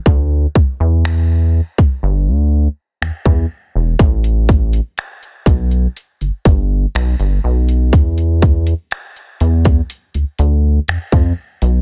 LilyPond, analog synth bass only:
\new Staff \with { instrumentName = "Analog synth bass" } { \clef bass \time 4/4 \key e \phrygian \tempo 4 = 61 d,8 r16 e,4 r16 g,,16 d,8 r16 e,16 e,16 r16 e,,16 | a,,4 r8 b,,8 r16 g,,16 g,,8 b,,16 g,,16 b,,8 | e,4 r8 e,8 r16 d,16 d,8 f,16 f,16 r16 b,,16 | }